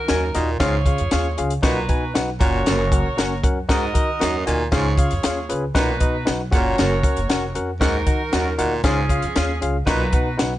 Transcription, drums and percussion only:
0.08 snare, closed hi-hat
0.35 snare, closed hi-hat
0.60 kick, snare, closed hi-hat
0.86 kick, closed hi-hat
0.98 closed hi-hat
1.11 snare, closed hi-hat
1.38 closed hi-hat
1.50 closed hi-hat
1.63 kick, snare, closed hi-hat
1.89 kick, closed hi-hat
2.15 snare, closed hi-hat
2.41 kick, closed hi-hat
2.66 snare, closed hi-hat
2.92 kick, closed hi-hat
3.18 snare, closed hi-hat
3.44 kick, closed hi-hat
3.69 kick, snare, closed hi-hat
3.95 kick, closed hi-hat
4.21 snare, closed hi-hat
4.47 snare, closed hi-hat
4.72 kick, snare, closed hi-hat
4.98 kick, closed hi-hat
5.11 closed hi-hat
5.23 snare, closed hi-hat
5.50 closed hi-hat
5.75 kick, snare, closed hi-hat
6.00 kick, closed hi-hat
6.27 snare, closed hi-hat
6.52 kick, snare, closed hi-hat
6.78 snare, closed hi-hat
7.03 kick, closed hi-hat
7.17 closed hi-hat
7.30 snare, closed hi-hat
7.55 closed hi-hat
7.81 kick, snare, closed hi-hat
8.07 kick, closed hi-hat
8.33 snare, closed hi-hat
8.59 closed hi-hat
8.84 kick, snare, closed hi-hat
9.09 kick, closed hi-hat
9.22 closed hi-hat
9.36 snare, closed hi-hat
9.62 closed hi-hat
9.87 kick, snare, closed hi-hat
10.13 kick, closed hi-hat
10.39 snare, closed hi-hat

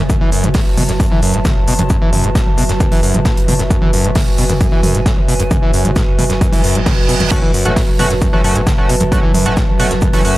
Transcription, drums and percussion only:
0.10 kick, closed hi-hat, mid tom, shaker
0.32 open hi-hat, shaker
0.44 closed hi-hat, mid tom
0.54 kick, snare, closed hi-hat, open hi-hat
0.77 mid tom, open hi-hat, shaker
0.89 snare, closed hi-hat
1.00 kick, closed hi-hat, shaker
1.11 mid tom
1.22 open hi-hat, shaker
1.34 closed hi-hat
1.45 kick, snare, closed hi-hat, mid tom, shaker
1.68 open hi-hat, shaker
1.79 closed hi-hat, mid tom
1.90 kick, closed hi-hat, shaker
2.13 mid tom, open hi-hat, shaker
2.24 closed hi-hat
2.35 kick, snare, closed hi-hat, shaker
2.47 mid tom
2.57 open hi-hat, shaker
2.69 snare, closed hi-hat
2.80 kick, closed hi-hat, mid tom, shaker
2.92 closed hi-hat, open hi-hat
3.03 open hi-hat, shaker
3.14 closed hi-hat, mid tom
3.25 kick, snare, closed hi-hat, shaker
3.37 closed hi-hat
3.48 mid tom, open hi-hat, shaker
3.59 snare, closed hi-hat
3.70 kick, closed hi-hat, shaker
3.82 mid tom
3.93 open hi-hat, shaker
4.04 closed hi-hat
4.15 kick, snare, closed hi-hat, mid tom, open hi-hat
4.37 open hi-hat, shaker
4.49 snare, closed hi-hat, mid tom
4.61 kick, closed hi-hat, shaker
4.83 mid tom, open hi-hat, shaker
4.95 closed hi-hat
5.06 kick, snare, closed hi-hat, shaker
5.17 mid tom
5.28 open hi-hat, shaker
5.40 closed hi-hat
5.51 kick, closed hi-hat, mid tom, shaker
5.74 open hi-hat, shaker
5.85 closed hi-hat, mid tom
5.96 kick, snare, closed hi-hat, shaker
6.19 mid tom, open hi-hat, shaker
6.30 snare, closed hi-hat
6.41 kick, closed hi-hat, shaker
6.53 closed hi-hat, mid tom, open hi-hat
6.64 open hi-hat, shaker
6.75 closed hi-hat
6.86 kick, snare, closed hi-hat, mid tom, open hi-hat
7.09 open hi-hat, shaker
7.20 snare, closed hi-hat, mid tom
7.31 kick, closed hi-hat, mid tom, crash, shaker
7.54 open hi-hat, shaker
7.65 closed hi-hat, mid tom
7.76 kick, snare, closed hi-hat, open hi-hat
7.99 mid tom, open hi-hat, shaker
8.10 snare, closed hi-hat
8.21 kick, closed hi-hat, shaker
8.33 mid tom
8.44 open hi-hat, shaker
8.56 closed hi-hat
8.67 kick, snare, closed hi-hat, mid tom, shaker
8.89 open hi-hat, shaker
9.00 closed hi-hat, mid tom
9.12 kick, closed hi-hat, shaker
9.34 mid tom, open hi-hat, shaker
9.46 closed hi-hat
9.57 kick, snare, closed hi-hat, shaker
9.68 mid tom
9.79 open hi-hat, shaker
9.91 snare, closed hi-hat
10.01 kick, closed hi-hat, mid tom, shaker
10.13 closed hi-hat, open hi-hat
10.25 open hi-hat, shaker

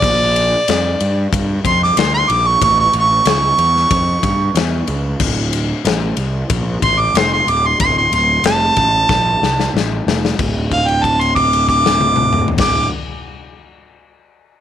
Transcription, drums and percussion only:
0.02 kick, crash
0.36 ride
0.68 snare, ride
1.00 ride
1.33 kick, ride
1.65 kick, ride
1.84 snare
1.97 snare, ride
2.30 ride
2.62 kick, ride
2.93 ride
3.25 snare, ride
3.58 ride
3.76 snare
3.91 kick, ride
4.23 kick, ride
4.55 snare, ride
4.87 ride
5.20 kick, crash
5.53 ride
5.85 snare, ride
6.17 ride
6.50 kick, ride
6.82 kick, ride
7.15 snare, ride
7.48 ride
7.80 kick, ride
8.13 ride
8.44 snare, ride
8.76 kick, ride
9.09 kick, snare
9.43 snare
9.60 snare
9.77 snare
10.08 snare
10.25 snare
10.39 kick, crash
10.72 kick, crash
10.88 crash
11.04 kick, crash
11.21 crash
11.36 kick, crash
11.53 crash
11.69 kick, crash
11.86 snare
12.01 high tom
12.16 mid tom
12.33 mid tom
12.48 floor tom
12.58 kick, snare, crash

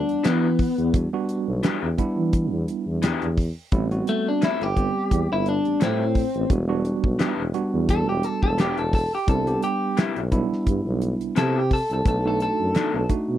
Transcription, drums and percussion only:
0.09 closed hi-hat
0.24 snare, closed hi-hat
0.59 kick, open hi-hat
0.78 closed hi-hat
0.94 kick, closed hi-hat
1.29 closed hi-hat
1.63 snare, closed hi-hat
1.98 kick, closed hi-hat
2.33 kick, closed hi-hat
2.68 closed hi-hat
3.03 snare, closed hi-hat
3.22 closed hi-hat
3.38 kick, open hi-hat
3.72 kick, closed hi-hat
3.91 closed hi-hat
4.07 closed hi-hat
4.42 snare, closed hi-hat
4.61 closed hi-hat
4.77 kick, closed hi-hat
5.11 kick, closed hi-hat
5.46 closed hi-hat
5.65 closed hi-hat
5.81 snare, closed hi-hat
6.15 kick, open hi-hat
6.34 closed hi-hat
6.50 kick, closed hi-hat
6.85 closed hi-hat
7.04 kick
7.19 snare, closed hi-hat
7.54 closed hi-hat
7.89 kick, closed hi-hat
8.23 closed hi-hat
8.43 kick
8.58 snare, closed hi-hat
8.78 closed hi-hat
8.93 kick, open hi-hat
9.28 kick, closed hi-hat
9.47 closed hi-hat
9.63 closed hi-hat
9.97 snare, closed hi-hat
10.16 closed hi-hat
10.32 kick, closed hi-hat
10.53 snare
10.67 kick, closed hi-hat
11.02 closed hi-hat
11.21 closed hi-hat
11.36 snare, closed hi-hat
11.71 kick, open hi-hat
11.90 closed hi-hat
12.06 kick, closed hi-hat
12.40 closed hi-hat
12.75 snare, closed hi-hat
13.09 kick, closed hi-hat

